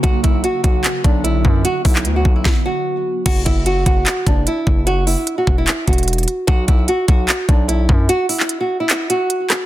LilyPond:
<<
  \new Staff \with { instrumentName = "Nylon-string guitar" } { \time 4/4 \key b \minor \tempo 4 = 149 fis'8 e'8 fis'8 fis'4 d'8 e'4 | fis'8 e'8. fis'8 e'8. fis'4. | fis'8 e'8 fis'8 fis'4 d'8 e'4 | fis'8 e'8. fis'8 e'8. fis'4. |
fis'8 e'8 fis'8 fis'4 d'8 e'4 | fis'8 e'8. fis'8 e'8. fis'4. | }
  \new Staff \with { instrumentName = "Ambient pad" } { \clef bass \time 4/4 \key b \minor <d fis b fis'>1~ | <d fis b fis'>2 r2 | r1 | r1 |
r1 | r1 | }
  \new Staff \with { instrumentName = "808-style bass" } { \clef bass \time 4/4 \key b \minor b,,8 b,,8 r8 b,,8 r8 b,,4 fis,8 | r8 b,,8 d,8 b,,8 r2 | fis,,8 fis,,4 fis,,8 r8 fis,,8 r8 fis,,8~ | fis,,8. r8. e,,8 r8 e,,4 r8 |
b,,8 b,,8 r8 b,,8 r8 b,,4 fis,8 | r1 | }
  \new DrumStaff \with { instrumentName = "Drums" } \drummode { \time 4/4 <hh bd>8 <hh bd>8 hh8 <hh bd>8 <hc hh>8 <hh bd>8 hh8 bd8 | hh8 <hho bd>16 hc16 hh8 bd8 <bd sn>4 r4 | <cymc hh bd>8 <hh bd>8 hh8 <hh bd>8 <hc hh>8 <hh bd>8 hh8 bd8 | hh8 hho8 hh8 bd8 <hc hh>8 <hh bd>32 hh32 hh32 hh32 hh32 hh32 hh32 hh32 hh8 |
<hh bd>8 <hh bd>8 hh8 <hh bd>8 <hc hh>8 <hh bd>8 hh8 bd8 | hh8 hho16 hc16 hh4 <hc hh>8 hh8 hh8 <hc hh ss>8 | }
>>